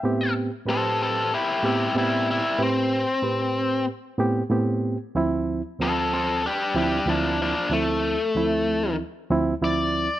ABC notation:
X:1
M:4/4
L:1/8
Q:"Swing 16ths" 1/4=94
K:Am
V:1 name="Lead electric guitar"
e z [CA] [CA] [EG] [EG] [G,E] [G,E] | C4 z4 | z2 [CA] [CA] [DG] [DG] [F,D] [F,D] | A,4 z2 d2 |]
V:2 name="Reed electric piano"
[A,,B,CG] z [A,,CGB]2 z [A,,B,CG] [A,,B,CG] z | [A,,CGB] z [A,,CGB]2 z [A,,B,CG] [A,,B,CG] z | [D,,F,CE] z [D,,F,CF]2 z [D,,F,CE] [D,,F,CE] z | [D,,F,CE] z [D,,F,CE]2 z [D,,F,CE] [D,,F,CE] z |]